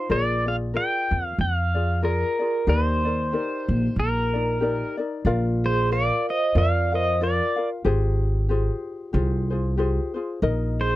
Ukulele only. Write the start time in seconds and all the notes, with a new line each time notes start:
0.09 F4 G#4 A#4 D5
0.46 F4 G#4 D5
0.74 F4 G#4 A#4 D5
1.75 F4 G#4 D5
2.02 F4 G#4 A#4 D5
2.39 F4 G#4 D5
2.67 D#4 G4 A#4 D5
3.05 D#4 A#4 D5
3.32 D#4 G4 A#4 D5
4.34 D#4 A#4 D5
4.60 D#4 G4 A#4 D5
4.97 D#4 A#4 D5
5.26 F4 A#4 D5 F5
5.91 F4 A#4 F5
6.55 F4 A#4 D5 F5
6.92 F4 A#4 F5
7.21 F4 A#4 D5 F5
7.56 F4 A#4 F5
7.85 F4 G4 G#4 C5
8.49 F4 G4 G#4 C5
9.13 F4 G4 G#4 C5
9.50 F4 G#4 C5
9.77 F4 G4 G#4 C5
10.14 F4 G#4 C5
10.42 D#4 A#4 D#5